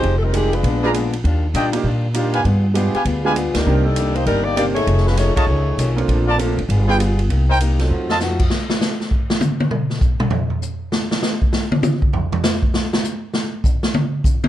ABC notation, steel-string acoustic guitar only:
X:1
M:4/4
L:1/8
Q:"Swing" 1/4=198
K:Fmix
V:1 name="Steel-string acoustic guitar"
[F,_A,EG] z [F,A,EG] z [B,,A,_CD] z [B,,A,CD] z | [E,G,DF] z [E,G,DF] z [E,G,DF] z [E,G,DF] z | [G,=B,F_A] z [G,B,FA] z [G,B,FA] z [G,B,FA] z | [C,E,B,D] z [C,E,B,D] z [C,E,B,D] z [C,E,B,D] z |
[F,,E,A,^C] z [F,,E,A,C] z [F,,E,A,C] z [F,,E,A,C] z | [B,,F,A,D] z [B,,F,A,D] z [G,=B,F_A] z [G,B,FA] z | [C,B,EG] z [C,B,EG] z [F,A,E_G] z [F,A,EG] z | z8 |
z8 | z8 | z8 | z8 |]